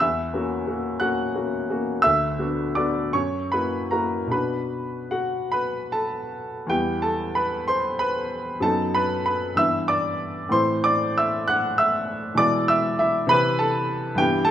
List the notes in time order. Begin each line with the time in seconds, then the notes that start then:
0.00 E2 E5 E6
0.34 A#3 C#4 F#4
0.67 A#3 C#4 F#4
1.00 A#3 C#4 F#4 F#5 F#6
1.35 A#3 C#4 F#4
1.70 A#3 C#4 F#4
2.02 D2 E5 E6
2.38 B3 D4 F#4
2.75 B3 D4 F#4 D5 D6
3.13 F#2 C#5 C#6
3.52 A#3 E4 F#4 B4 B5
3.91 A#3 E4 F#4 A#4 A#5
4.27 B2 B3 D4 F#4
4.32 B4 B5
5.11 F#4 F#5
5.52 B4 B5
5.92 A4 A5
6.67 E2 G3 B3 E4 G4 G5
7.02 A4 A5
7.35 B4 B5
7.68 C5 C6
7.99 B4 B5
8.60 F#2 F#3 B3 D#4 A4 A5
8.95 B4 B5
9.26 B4 B5
9.55 G2 E3 B3 E4 E5 E6
9.88 D5 D6
10.49 A2 E3 C4 E4 C6
10.53 C5
10.84 D5 D6
11.18 E5 E6
11.48 F#5 F#6
11.78 E5 E6
12.35 B2 E3 G#3 E4 D5 D6
12.68 E5 E6
12.99 E4 E5
13.27 C3 E3 C4 E4 B4 B5
13.59 A4 A5
14.15 G2 E3 B3 E4 G4 G5
14.45 A4 A5